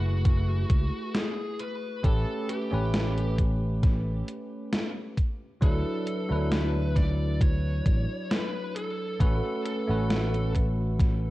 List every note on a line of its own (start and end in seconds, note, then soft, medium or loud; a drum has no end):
0.00 0.64 F#1 loud
0.00 2.03 A3 loud
0.00 2.05 E4 medium
0.00 1.15 F#4 loud
0.00 2.06 G#4 medium
0.00 2.05 B4 loud
0.25 kick loud
0.25 closed hi-hat medium
0.70 0.89 C#2 medium
0.70 kick loud
0.70 closed hi-hat medium
1.15 1.61 G#4 loud
1.15 snare loud
1.15 closed hi-hat medium
1.59 2.04 B4 loud
1.59 closed hi-hat medium
2.03 2.23 A1 loud
2.03 2.67 A3 loud
2.03 2.67 C#4 medium
2.03 2.67 G4 medium
2.03 2.50 A4 loud
2.03 2.67 B4 loud
2.03 kick loud
2.03 closed hi-hat medium
2.49 3.35 G4 medium
2.49 closed hi-hat medium
2.71 4.22 A1 loud
2.71 5.14 A3 medium
2.71 5.15 C#4 medium
2.71 5.15 G4 medium
2.71 5.15 B4 loud
2.94 snare loud
2.94 closed hi-hat medium
3.18 closed hi-hat soft
3.38 kick medium
3.38 closed hi-hat medium
3.83 kick loud
3.83 snare soft
3.83 closed hi-hat medium
4.28 closed hi-hat medium
4.73 snare loud
4.73 closed hi-hat medium
5.17 kick medium
5.17 closed hi-hat medium
5.61 5.82 D2 loud
5.61 6.24 F#3 loud
5.61 6.25 D4 medium
5.61 6.25 E4 medium
5.61 6.55 A4 medium
5.61 6.25 B4 loud
5.61 kick loud
5.61 closed hi-hat medium
6.07 closed hi-hat medium
6.29 7.80 D2 medium
6.29 9.14 F#3 medium
6.29 9.15 D4 medium
6.29 9.16 E4 medium
6.29 9.16 B4 loud
6.52 6.94 B4 loud
6.52 snare loud
6.52 closed hi-hat medium
6.96 7.41 D5 loud
6.96 kick medium
6.96 snare soft
6.96 closed hi-hat medium
7.41 8.34 C#5 loud
7.41 kick loud
7.41 closed hi-hat medium
7.86 8.05 A1 medium
7.86 kick loud
7.86 closed hi-hat medium
8.31 8.75 B4 loud
8.31 snare loud
8.31 closed hi-hat medium
8.76 9.61 A4 medium
8.76 closed hi-hat medium
9.20 9.40 A1 loud
9.20 9.83 A3 loud
9.20 9.83 C#4 medium
9.20 9.83 F#4 medium
9.20 9.84 B4 loud
9.20 kick loud
9.20 closed hi-hat medium
9.65 10.51 A4 medium
9.65 closed hi-hat medium
9.87 11.30 A1 medium
9.87 11.30 A3 medium
9.87 11.30 C#4 medium
9.87 11.30 F#4 medium
9.87 11.30 B4 loud
10.10 snare loud
10.10 closed hi-hat medium
10.34 closed hi-hat soft
10.55 kick medium
10.55 closed hi-hat medium
10.99 kick loud
10.99 snare soft
10.99 closed hi-hat medium